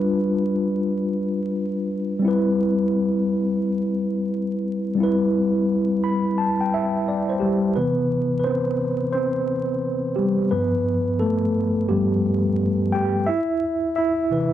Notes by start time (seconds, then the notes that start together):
Already playing: G3 D4 F4 B4
2.19 G3 C4
2.25 E4 B4
4.95 G3 C4
5.00 E4 B4
6.04 B5
6.38 A5
6.61 G5
6.74 E5
7.08 D5
7.29 C5
7.40 G3 G4
7.76 C3 E3 B3 B4
8.39 B4
8.44 C4 C5
9.12 C4 C5
10.16 G3 G4
10.51 G2 F3 B3 B4
11.20 A3 A4
11.89 G2 F3 G3 B3 G4
12.92 G4 G5
13.26 E4 E5
13.96 E4 E5
14.31 C3 E3 B4